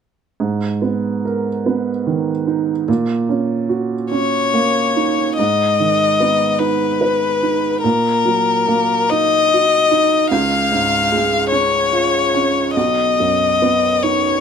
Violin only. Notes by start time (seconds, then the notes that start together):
4.11 C#5
5.38 D#5
6.59 B4
7.83 A#4
9.10 D#5
10.31 F5
11.51 C#5
12.76 D#5
14.03 C#5